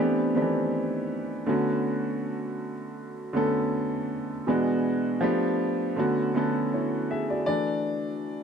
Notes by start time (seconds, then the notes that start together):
Already playing: E3 A3 B3
0.00 C4 D4 G4
0.35 D#3 A3 B3 C4 D4 G4
0.42 E3
1.46 D3 A3 B3 C#4 F#4
3.33 D3 A3 B3 C#4 A4
4.47 B2 E3 G#3 B3 D4 F#4
5.21 F3 A3 B3 D4 G4
5.96 D3 A3 B3 C#4 F#4
6.34 D3 A3 B3 C#4 A4
6.74 E4 C#5
7.11 G#4 E5
7.30 F#4 D5
7.46 E3 A3 D4 D5